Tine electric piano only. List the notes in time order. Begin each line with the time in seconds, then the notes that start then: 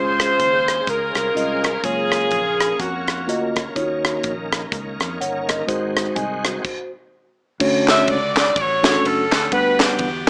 Already playing: C#3 G#3 C#4 F4 C5
1.35 G#3 C#4 F4 D#5
1.83 C#3 F#3 A#3 F4 C#5
3.27 A#3 F4 F#4 D#5
3.75 D#3 A#3 D#4 F4 C#5
3.82 F#4
5.21 C#5 F#5
5.50 A#4
5.67 G#2 G#3 D#4 F#4 C5
6.16 D#5 G#5
6.45 F#4 C5
7.60 D3 A3 C#4 D4 F#4 C#5
8.82 A3 C#4 D4 F#4 A4
9.52 D3 G3 B3 D4 B4 F#5